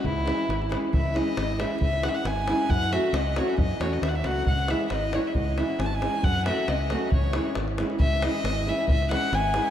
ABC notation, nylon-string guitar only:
X:1
M:2/4
L:1/8
Q:"Swing 16ths" 1/4=136
K:C#m
V:1 name="Nylon-string guitar"
z [E,G,CE] z [E,G,CE] | z [E,G,CE] z [E,G,CE] | z [E,G,CE] z [E,G,CE] | z [F,A,CF] z [F,A,CF] |
z [F,A,CF] z [F,A,CF] | z [E,G,CE] z [E,G,CE] | z [E,G,CE] z [E,G,CE] | z [F,A,CF] z [F,A,CF] |
z [E,G,CE] z [E,G,CE] | z [E,G,CE] z [E,G,CE] | z [E,G,CE] z [E,G,CE] |]